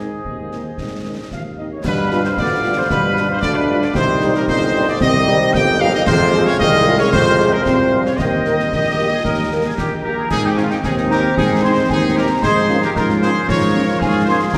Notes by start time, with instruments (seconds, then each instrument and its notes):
Already playing: tuba G#2, trumpet section G#4, woodwind section C5 D#5
0.25 tuba D#2, euphonium C4, concert bass drum
0.41 euphonium A#3
0.52 french horn section D#3 C4 D#4, euphonium G#3, snare
0.68 euphonium A#3
0.78 tuba G#2, euphonium C4, concert bass drum, snare
1.05 french horn section D#3 C4 D#4, euphonium C#4
1.31 tuba D#2, euphonium F3, flute section F5, trumpet section F5, concert bass drum, snare
1.57 french horn section D#3 C4 D#4, euphonium D#3, flute section D#5, trumpet section D#5
1.70 euphonium C#3, flute section C#5, trumpet section C#5
1.84 tuba G2, euphonium B2, trombone section D4, woodwind section G4 F5, flute section B4, trumpet section B4, concert bass drum, snare, crash
2.11 french horn section G3 D4 F4, snare
2.23 euphonium C3, flute section C5, trumpet section C5, snare
2.37 tuba D2, euphonium D3, trombone section B3, flute section D5, trumpet section D5, concert bass drum, snare
2.63 french horn section G3 D4 F4
2.77 euphonium C3, flute section C5, trumpet section C5
2.89 tuba G2, euphonium B2, trombone section D4, trumpet section B4, flute section B4, concert bass drum, snare
3.17 french horn section G3 D4 F4, snare
3.29 euphonium C3, flute section C5, trumpet section C5
3.42 tuba D2, euphonium D3, trombone section D4, trumpet section D5, flute section D5, concert bass drum, snare
3.54 euphonium B2, trumpet section B4, flute section B4
3.70 french horn section G3 D4 F4
3.81 euphonium D3, flute section D5, trumpet section D5, snare
3.93 tuba C2, euphonium C3, trombone section D#4, flute section C5, trumpet section C5, woodwind section D#5, concert bass drum, snare
3.97 woodwind section G4
4.21 french horn section G3 D#4 G4, snare
4.35 euphonium A#2, flute section A#4, trumpet section A#4, snare
4.46 tuba G1, euphonium C3, flute section C5, trumpet section C5, concert bass drum, snare
4.75 french horn section G3 D#4 G4
4.88 euphonium D3, flute section D5, trumpet section D5
4.99 tuba C2, euphonium D#3, trombone section C4, trumpet section D#5, flute section D#5, concert bass drum, snare
5.27 french horn section G3 D#4 G4, snare
5.54 tuba G1, euphonium G3, trombone section A#3, trumpet section G5, flute section G5, concert bass drum, snare
5.80 euphonium F3, french horn section G3 D#4 G4, flute section F5, trumpet section F5
5.93 euphonium D#3, flute section D#5, trumpet section D#5, snare
6.07 tuba F2, euphonium C3, trombone section G#3, woodwind section G#4 F5, trumpet section C5, flute section C5, concert bass drum, snare, crash
6.34 french horn section F3 F4 G#4, snare
6.46 euphonium C#3, flute section C#5, trumpet section C#5, snare
6.59 tuba C2, euphonium D#3, trumpet section D#5, flute section D#5, concert bass drum, snare
6.86 french horn section F3 F4 G#4
6.99 euphonium C#3, flute section C#5, trumpet section C#5
7.12 tuba F2, euphonium C3, trumpet section C5, flute section C5, concert bass drum, snare
7.40 french horn section F3 F4 G#4, snare
7.52 euphonium A#2, flute section A#4, trumpet section A#4
7.64 tuba C2, euphonium C3, trombone section C4, trumpet section C5, flute section C5, concert bass drum, snare
7.93 french horn section F3 F4 G#4
8.05 euphonium C#3, flute section C#5, trumpet section C#5, snare
8.17 tuba D#2, euphonium D#3, trombone section G3, woodwind section A#4 G5, trumpet section D#5, flute section D#5, concert bass drum, snare
8.45 french horn section A#3 G4 A#4, snare
8.59 snare
8.72 tuba A#1, woodwind section G4, concert bass drum, snare
8.98 french horn section A#3 G4 A#4
9.14 woodwind section G#4
9.25 tuba D#2, woodwind section A#4, concert bass drum, snare
9.52 french horn section A#3 G4 A#4
9.66 woodwind section G#4
9.77 tuba A#1, woodwind section D#4 G4, trumpet section G4, flute section G5, concert bass drum, snare
10.03 french horn section A#3 G4 A#4, woodwind section G4, trumpet section A#4, flute section A#5
10.19 woodwind section G#4
10.30 tuba G#2, trombone section D#3 C4, euphonium C4, woodwind section D#4, trumpet section G#4, flute section G#5, concert bass drum, snare, crash
10.44 woodwind section D#4, trumpet section G4, flute section G5
10.56 french horn section C4 D#4, woodwind section C#4, trumpet section F4, flute section F5, snare
10.69 woodwind section D#4, trumpet section G4, flute section G5, snare
10.83 tuba D#2, woodwind section D#4, trumpet section G#4, flute section G#5, concert bass drum, snare
10.97 snare
11.09 french horn section C4 D#4, woodwind section G4, trumpet section A#4, flute section A#5, snare
11.37 tuba G#2, woodwind section D#4, trumpet section G#4, flute section G#5, concert bass drum, snare
11.62 french horn section C4 D#4, woodwind section G#4, trumpet section C5, flute section C6
11.90 tuba D#2, woodwind section D#4, trumpet section G#4, flute section G#5, concert bass drum, snare
12.16 french horn section C4 D#4, woodwind section G4, trumpet section A#4, flute section A#5
12.43 tuba G#2, trombone section F3 A#3, euphonium D#4, woodwind section G#4, trumpet section C5, flute section C6, concert bass drum, snare, crash
12.69 french horn section A#3 C#4 F4, snare
12.82 woodwind section G4, trumpet section A#4, flute section A#5, snare
12.96 tuba G#2, euphonium C#4, woodwind section F4, trumpet section A#4, flute section A#5, concert bass drum, snare
13.09 snare
13.21 french horn section A#3 C#4 F4, woodwind section G#4, trumpet section C5, flute section C6, snare
13.48 tuba G#2, euphonium F4, woodwind section A#4, trumpet section C#5, flute section C#6, concert bass drum, snare
13.74 french horn section A#3 C#4 F4
14.00 tuba G#2, woodwind section F4, trumpet section G#4, flute section G#5, concert bass drum, snare
14.25 french horn section A#3 C#4 F4, trumpet section C5, flute section C6
14.30 woodwind section G#4
14.53 tuba G2, trombone section D#3 C#4, euphonium D#4, trumpet section A#4, flute section A#5, concert bass drum, snare, crash